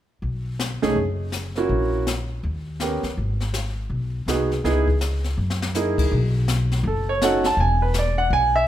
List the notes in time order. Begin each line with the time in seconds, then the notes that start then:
0.22 B1, brush sweep
0.59 snare, hi-hat pedal
0.82 C2 A3 C#4 D#4 G#4, snare
0.95 F#1, brush sweep
1.32 snare, hi-hat pedal
1.55 A#3 C#4 E4 F#4, snare
1.69 A#1, brush sweep
2.07 snare, hi-hat pedal
2.43 D#2, brush sweep
2.80 B3 C#4 G4 A#4, snare, hi-hat pedal
3.03 D#2, snare
3.17 G#1, brush sweep
3.40 snare
3.54 snare, hi-hat pedal
3.90 B1, brush sweep
4.26 C2 B3 D#4 F#4 G#4, snare, hi-hat pedal
4.52 snare
4.64 C#2 B3 D#4 E4 G#4, brush sweep, snare
4.88 kick
5.01 snare, hi-hat pedal
5.24 snare
5.38 F#2
5.50 snare
5.62 snare
5.75 A#3 D#4 E4 G#4, snare, hi-hat pedal
5.98 C#2, kick, crash
6.11 B1, brush sweep
6.48 snare, hi-hat pedal
6.71 snare
6.83 F#1, brush sweep
6.87 A4
7.09 C#5
7.22 C#4 D#4 F#4 A4 F#5, snare, hi-hat pedal
7.44 A5, snare
7.57 E1 G#5, brush sweep
7.82 B4
7.94 snare, hi-hat pedal
7.99 D5
8.18 F#5
8.30 B1 G#5, brush sweep
8.56 E5